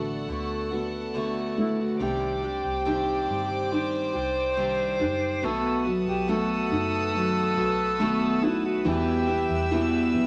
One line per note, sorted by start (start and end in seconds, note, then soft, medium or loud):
0.00 0.26 A1 medium
0.00 2.02 D3 medium
0.00 0.25 A3 soft
0.00 0.28 A3 soft
0.00 0.28 B3 soft
0.00 0.68 B3 soft
0.00 0.29 F#4 medium
0.00 1.96 A4 medium
0.00 1.96 D5 medium
0.00 1.96 F#5 medium
0.00 1.98 A5 medium
0.28 1.96 D2 medium
0.28 0.71 D3 medium
0.28 0.72 A3 soft
0.28 0.71 B3 soft
0.28 0.70 F#4 medium
0.71 1.14 A3 soft
0.71 1.14 B3 soft
0.71 1.96 B3 soft
0.71 1.14 F#4 soft
1.14 2.00 D3 medium
1.14 2.00 A3 medium
1.14 2.00 B3 medium
1.14 2.01 F#4 medium
1.58 1.99 A3 medium
1.58 1.82 E4 medium
1.80 2.04 F#4 medium
1.99 2.60 C2 medium
1.99 2.43 C3 medium
1.99 5.39 C3 medium
1.99 2.43 D#3 medium
1.99 2.43 G3 medium
1.99 2.42 D4 medium
1.99 2.41 G4 medium
1.99 3.72 G4 medium
1.99 5.40 C5 medium
1.99 5.40 D5 medium
1.99 5.40 G5 medium
1.99 5.40 D6 medium
2.42 3.28 G3 soft
2.42 2.85 G3 soft
2.42 2.85 D4 soft
2.42 2.85 G4 soft
2.65 3.25 C2 medium
2.85 3.71 C3 medium
2.85 3.70 D#3 medium
2.85 3.70 G3 medium
2.85 3.71 D4 medium
2.85 3.71 D#4 soft
2.85 3.72 G4 medium
3.29 4.11 G1 medium
3.29 4.56 G3 soft
3.71 4.14 D#3 soft
3.71 4.14 G3 medium
3.71 4.13 D4 soft
3.71 4.99 D#4 soft
3.71 4.12 G4 medium
3.71 5.46 C5 loud
4.14 5.01 C2 medium
4.14 4.56 G3 soft
4.14 4.56 D4 soft
4.14 4.56 G4 soft
4.56 5.00 C3 medium
4.56 5.00 D#3 medium
4.56 5.00 G3 medium
4.56 5.41 G3 soft
4.56 4.99 D4 medium
4.56 4.98 G4 medium
4.99 5.40 F#1 medium
4.99 5.42 G3 soft
4.99 5.43 D4 soft
4.99 5.42 D#4 soft
4.99 5.43 G4 medium
5.42 6.03 B1 medium
5.42 5.85 B2 medium
5.42 8.82 B2 medium
5.42 5.86 D#3 medium
5.42 5.86 A3 medium
5.42 5.84 B3 medium
5.42 5.83 F#4 medium
5.42 5.81 A4 medium
5.42 10.27 B4 medium
5.42 8.82 F#5 medium
5.42 8.82 A5 medium
5.42 8.82 D#6 medium
5.85 7.13 F#3 soft
5.85 6.27 A3 soft
5.85 6.28 B3 soft
5.85 6.28 F#4 soft
6.07 6.68 B1 medium
6.07 6.31 G4 medium
6.28 7.14 B2 medium
6.28 7.12 D#3 medium
6.28 7.13 A3 medium
6.28 7.96 A3 soft
6.28 7.14 B3 medium
6.28 7.14 F#4 medium
6.28 8.45 A4 loud
6.71 7.53 F#1 medium
6.71 8.39 D#4 soft
7.13 7.57 D#3 soft
7.13 8.82 F#3 medium
7.13 7.57 A3 soft
7.13 7.56 B3 soft
7.13 7.55 F#4 medium
7.56 8.82 B1 medium
7.56 7.99 A3 soft
7.56 7.99 B3 soft
7.56 7.99 F#4 medium
7.99 8.42 B2 medium
7.99 8.43 D#3 medium
7.99 8.83 A3 soft
7.99 8.43 A3 medium
7.99 8.42 B3 medium
7.99 8.41 F#4 medium
8.42 8.85 A3 soft
8.42 8.85 B3 soft
8.42 8.84 D#4 soft
8.42 8.64 E4 medium
8.42 8.85 F#4 soft
8.65 8.88 F#4 medium
8.85 9.28 E2 medium
8.85 9.46 E2 medium
8.85 9.28 B2 medium
8.85 10.27 E3 medium
8.85 9.28 E3 medium
8.85 9.28 G3 medium
8.85 9.27 B3 medium
8.85 9.27 E4 medium
8.85 10.27 G4 loud
8.85 10.27 E5 medium
8.85 10.27 G5 medium
8.85 10.27 E6 medium
9.28 9.70 E3 soft
9.28 9.70 G3 soft
9.28 10.12 B3 medium
9.28 9.71 B3 soft
9.28 9.71 E4 medium
9.49 10.15 E2 medium
9.71 10.27 E2 medium
9.71 10.27 B2 medium
9.71 10.27 E3 medium
9.71 10.27 G3 medium
9.71 10.27 B3 medium
9.71 10.27 E4 soft
9.71 10.27 E4 medium
10.14 10.27 B1 medium
10.14 10.27 B3 soft